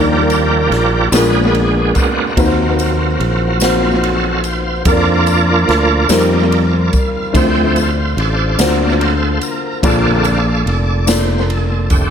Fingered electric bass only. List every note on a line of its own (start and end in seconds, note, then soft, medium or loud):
0.00 0.67 D#2 loud
0.70 1.09 A#1 medium
1.12 1.91 A#1 loud
2.37 3.16 D#2 loud
3.20 4.82 A#1 medium
4.86 5.65 F2 loud
5.69 6.07 D2 medium
6.10 6.89 F2 medium
7.35 8.14 D2 loud
8.17 8.55 A1 medium
8.59 9.38 D2 loud
9.84 10.62 A#1 loud
10.66 12.10 F1 medium